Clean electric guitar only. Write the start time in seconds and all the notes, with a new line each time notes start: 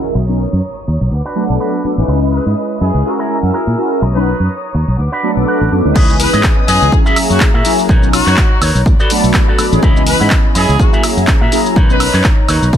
0.15 muted clean electric guitar stroke
0.29 muted clean electric guitar stroke
0.87 muted clean electric guitar stroke
1.01 muted clean electric guitar stroke
1.25 D4 F#4 B4
1.60 D4 F#4 B4
2.08 muted clean electric guitar stroke
2.22 muted clean electric guitar stroke
2.81 muted clean electric guitar stroke
2.94 muted clean electric guitar stroke
3.19 E4 G#4 A#4
3.53 E4 G#4 A#4
4.02 muted clean electric guitar stroke
4.16 muted clean electric guitar stroke
4.75 muted clean electric guitar stroke
4.88 muted clean electric guitar stroke
5.12 D4 F#4 B4
5.47 D4 F#4 B4
5.95 E4 B4 C#5 D#5
6.33 E4 B4 C#5 D#5
6.57 muted clean electric guitar stroke
6.68 E4 B4 C#5 D#5
7.06 F#4 G#4 A#4 E5
7.30 muted clean electric guitar stroke
7.54 F#4 G#4 A#4 E5
7.89 D#4 A#4 B4 C#5
8.27 D#4 A#4 B4 C#5
8.51 muted clean electric guitar stroke
8.62 D#4 A#4 B4 C#5
9.00 F#4 A4 B4 D5
9.24 muted clean electric guitar stroke
9.48 F#4 A4 B4 D5
9.83 E4 B4 C#5 D#5
10.20 E4 B4 C#5 F#5
10.45 muted clean electric guitar stroke
10.55 E4 B4 C#5 D#5
10.93 F#4 G#4 A#4 E5
11.17 muted clean electric guitar stroke
11.41 F#4 G#4 A#4 E5
11.76 D#4 A#4 B4 C#5
12.14 D#4 A#4 B4 C#5
12.38 muted clean electric guitar stroke
12.49 D#4 A#4 B4 C#5